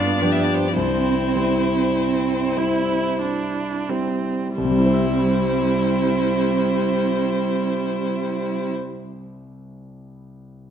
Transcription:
Already playing: grand piano G2, viola B3, cello D4, violin F4 D5
0.21 grand piano F3 D4 B4, violin G4
0.32 violin E5
0.43 violin D5
0.56 violin C5
0.67 violin D5
0.76 grand piano C2, cello C4, viola C4, violin E4 C5
1.35 grand piano G3 E4 C5
1.95 viola C4
2.57 grand piano G3 E4 C5, viola E4
3.22 viola D4
3.89 grand piano G3 E4 C5, viola C4
4.57 grand piano C2, viola G3, cello C4, violin E4 C5
4.65 grand piano C3
4.71 grand piano G3
4.79 grand piano E4
4.86 grand piano C5
4.93 grand piano E5

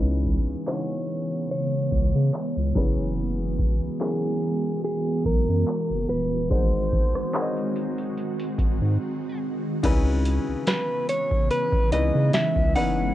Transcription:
Already playing: sub bass C#2, grand piano C#3 C#4 D#4 E4 B4, ambient pad C#3 E3 G#3 B3
0.07 closed hi-hat
0.25 kick, closed hi-hat
0.48 sub bass C#2, closed hi-hat
0.67 grand piano C#3 C#4 D#4 E4 F#4, clean electric guitar C#5, clap, closed hi-hat
0.90 closed hi-hat
1.09 closed hi-hat
1.31 closed hi-hat
1.51 clean electric guitar C#5, closed hi-hat
1.73 closed hi-hat
1.92 sub bass C#2, kick, closed hi-hat
2.15 sub bass C#3
2.33 clap, closed hi-hat
2.56 sub bass C#2, closed hi-hat
2.75 sub bass F#1, ambient pad E3 G#3 B3 F#4, grand piano F#3 C#4 E4 G#4 B4, kick, closed hi-hat
3.17 closed hi-hat
3.40 closed hi-hat
3.59 kick, closed hi-hat
3.81 sub bass B1, closed hi-hat
4.00 grand piano F#3 C#4 E4 G#4 A#4, clean electric guitar G#4, clap, closed hi-hat
4.23 closed hi-hat
4.42 closed hi-hat
4.65 closed hi-hat
4.84 clean electric guitar G#4, closed hi-hat
5.06 closed hi-hat
5.25 sub bass B1, clean electric guitar A#4, kick, closed hi-hat
5.49 sub bass F#2
5.67 clap, closed hi-hat
5.90 sub bass F#1, closed hi-hat
6.09 sub bass D#1, clean electric guitar B4, closed hi-hat
6.50 sub bass G#1, ambient pad D#3 C4 F#4, grand piano G#3 D#4 F#4 A#4 C5, clean electric guitar C5, kick, closed hi-hat
6.74 closed hi-hat
6.92 kick, closed hi-hat
7.15 sub bass G#1, cross-stick, closed hi-hat
7.33 grand piano G#3 D#4 F#4 A#4 C#5, clap, closed hi-hat
7.41 grand piano D#5
7.57 closed hi-hat
7.76 closed hi-hat
7.98 closed hi-hat
8.18 closed hi-hat
8.40 closed hi-hat
8.58 sub bass G#1, kick, closed hi-hat
8.82 sub bass G#2
9.83 sub bass C#2, grand piano C#3 C#4 D#4 E4 B4, ambient pad C#3 E3 G#3 B3, kick, closed hi-hat, crash
10.26 closed hi-hat
10.48 sub bass C#2
10.67 clean electric guitar B4, snare, closed hi-hat
11.09 clean electric guitar C#5, closed hi-hat
11.31 kick
11.51 clean electric guitar B4, closed hi-hat
11.72 kick
11.92 sub bass C#2, grand piano C#3 C#4 D#4 E4 B4, clean electric guitar D#5, closed hi-hat
12.15 sub bass C#3
12.33 clean electric guitar E5, snare, closed hi-hat
12.56 sub bass C#2, kick
12.75 sub bass F#1, grand piano C#3 C#4 D#4 E4 B4, clean electric guitar F#5, open hi-hat

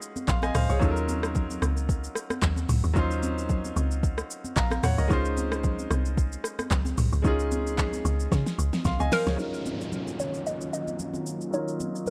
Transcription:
Already playing: grand piano G#3 C#4 D#4 F4 F#4 G#4
0.02 shaker
0.16 high conga, shaker
0.28 log drum bass A#1, grand piano F5 C6, kick, clap, low conga, shaker
0.42 grand piano D#5 G#5, cross-stick, high conga, shaker
0.54 log drum bass C#2, grand piano C5 F5, cross-stick, mid tom, open hi-hat, low conga, shaker
0.70 log drum bass C2, grand piano G#4 C#5, shaker
0.79 log drum bass D#2, grand piano F#3 C#4 D#4 F4, kick, shaker
0.85 grand piano A4
0.91 grand piano A#4
0.97 shaker
1.09 high conga, shaker
1.23 cross-stick, shaker
1.35 kick, low conga, shaker
1.50 high conga, shaker
1.62 log drum bass C#2, cross-stick, high conga, shaker
1.77 shaker
1.89 kick, shaker
2.04 shaker
2.15 cross-stick, shaker
2.30 cross-stick, high conga, shaker
2.42 log drum bass D#2, kick, clap, low conga, shaker
2.56 high conga, shaker
2.69 log drum bass C#2, mid tom, open hi-hat, low conga, shaker
2.84 log drum bass D#2, shaker
2.94 log drum bass D#2, grand piano F#3 C#4 D#4 F4, kick, shaker
2.99 grand piano C5
3.11 shaker
3.23 high conga, shaker
3.38 shaker
3.49 kick, low conga, shaker
3.65 high conga, shaker
3.76 log drum bass C#2, high conga, shaker
3.91 shaker
4.03 kick, shaker
4.18 cross-stick, shaker
4.31 shaker
4.44 high conga, shaker
4.56 log drum bass A#1, grand piano F5 A#5, kick, clap, low conga, shaker
4.71 cross-stick, high conga, shaker
4.83 log drum bass D#2, grand piano C#5 F#5, cross-stick, mid tom, open hi-hat, low conga, shaker
4.98 log drum bass C#2, grand piano A#4 D#5, shaker
5.08 log drum bass C#2, grand piano G#3 C#4 D#4 F4, kick, shaker
5.13 grand piano C5
5.25 shaker
5.37 high conga, shaker
5.52 cross-stick, shaker
5.63 kick, low conga, shaker
5.79 high conga, shaker
5.91 log drum bass C2, cross-stick, high conga, shaker
6.05 shaker
6.17 kick, shaker
6.32 shaker
6.44 cross-stick, shaker
6.59 cross-stick, high conga, shaker
6.71 log drum bass C#2, kick, clap, low conga, shaker
6.85 high conga, shaker
6.97 log drum bass C2, mid tom, open hi-hat, low conga, shaker
7.12 log drum bass C#2, shaker
7.22 log drum bass C#2, grand piano G#3 C#4 D#4 F4, kick, shaker
7.27 grand piano G#4
7.39 shaker
7.52 high conga, shaker
7.67 shaker
7.78 kick, clap, low conga, shaker
7.93 high conga, shaker
8.05 log drum bass C#2, high conga, shaker
8.20 shaker
8.32 log drum bass C#3, kick, snare, shaker
8.46 snare, shaker
8.59 log drum bass C#2, shaker
8.73 snare, high conga, shaker
8.85 log drum bass C2, grand piano F5 C6, kick, snare, low conga, shaker
8.99 log drum bass C#2, grand piano D#5 G#5, high conga, shaker
9.12 synth pluck A#4, grand piano C5 F5, snare, open hi-hat, low conga, shaker
9.27 log drum bass C#2, grand piano G#4 C#5, snare, shaker
9.36 analog synth pad D#3 F#3 A#3 C#4 F4, grand piano F#3 C#4 D#4 F4, downlifter, shaker
9.42 grand piano A#4
9.54 shaker
9.66 high conga, shaker
9.81 shaker
9.92 low conga, shaker
10.07 high conga, shaker
10.19 synth pluck C#5, high conga, shaker
10.34 shaker
10.47 synth pluck D#5, shaker
10.61 shaker
10.73 synth pluck D#5, shaker
10.87 high conga, shaker
10.99 low conga, shaker
11.14 high conga, shaker
11.27 shaker
11.41 shaker
11.51 grand piano F#3 C#4 D#4 F4, analog synth pad D#4, synth pluck C#5, shaker
11.56 grand piano A#4
11.68 shaker
11.80 high conga, shaker
11.95 shaker
12.06 low conga, shaker

